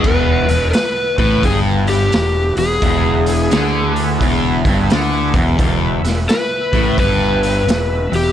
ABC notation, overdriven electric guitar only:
X:1
M:4/4
L:1/8
Q:"Swing" 1/4=87
K:Emix
V:1 name="Overdriven electric guitar" clef=bass
E,, E,, z A,, =G,,2 E,, E,, | E,,2 D,2 E,, =G,, D, E,, | E,, E,, z A,, =G,,2 E,, E,, |]